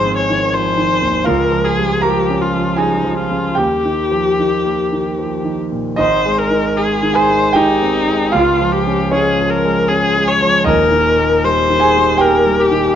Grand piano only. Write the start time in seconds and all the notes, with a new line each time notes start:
Already playing: G#1 D#3 F3 G#4 C5 G#5 C6
0.06 C4
0.30 D#3
0.54 F3
0.78 D#3
1.02 D#2
1.24 C#2 F4 F5
1.51 F3
1.79 G3
2.02 F3 A#4 A#5
2.30 C#4
2.54 F3
2.76 G3 G#4 G#5
3.04 F3
3.30 C#3
3.55 D#2 G4 G5
3.85 D#3
4.11 F3
4.40 D#3
4.65 A#3
4.92 D#3
5.19 F3
5.45 D#3
5.72 A#2
5.96 G#1 G#2 D#4 D#5
6.25 G#3
6.51 D#3
6.77 G#3
7.03 D#3
7.14 G#4 G#5
7.29 G#3
7.53 D#3 G4 G5
7.82 C4
8.07 G#3
8.32 C#2 F4 F5
8.61 F3
8.87 C#4
9.11 G#3 C#4 C#5
9.40 F3
9.65 G#3
9.90 C#4
10.16 G#3
10.41 F3
10.64 D#1 D#2 D#4 D#5
10.91 D#3
11.18 A#3
11.44 G3
11.70 D#3
11.80 G#4 G#5
11.96 G3
12.18 A#3 G4 G5
12.46 G3
12.71 D#3